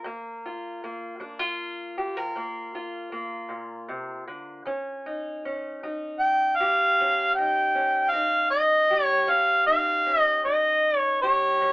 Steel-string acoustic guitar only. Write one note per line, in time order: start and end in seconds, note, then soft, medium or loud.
0.00 1.97 A#4 medium
0.04 0.74 G2 medium
0.04 0.83 A#3 medium
0.46 1.20 F4 medium
0.84 2.36 A#3 medium
1.20 1.89 G3 medium
1.20 1.39 D4 medium
1.39 2.74 F4 medium
1.98 2.17 G4 medium
2.17 4.67 A#4 medium
2.36 3.05 G2 medium
2.36 3.12 A#3 medium
2.75 4.62 F4 medium
3.12 4.66 A#3 medium
3.49 3.88 A#2 medium
3.88 4.27 C3 medium
4.27 4.65 D3 medium
4.65 5.35 D#3 medium
4.65 5.45 C#4 medium
5.06 5.83 D#4 medium
5.45 7.00 C#4 medium
5.83 6.52 G3 medium
5.83 7.38 D#4 medium
6.60 8.89 G4 medium
7.00 7.68 D#3 medium
7.00 7.74 C#4 medium
7.38 8.13 D#4 medium
7.75 9.24 C#4 medium
8.12 8.82 G3 medium
8.12 9.31 D#4 medium
8.90 11.21 G4 medium
9.27 9.97 D#3 medium
9.27 10.05 C#4 medium
9.67 10.45 D#4 medium
10.06 11.59 C#4 medium
10.45 11.13 G3 medium
10.45 11.73 D#4 medium
11.23 11.73 G4 medium
11.61 11.73 D#3 medium
11.61 11.73 C#4 medium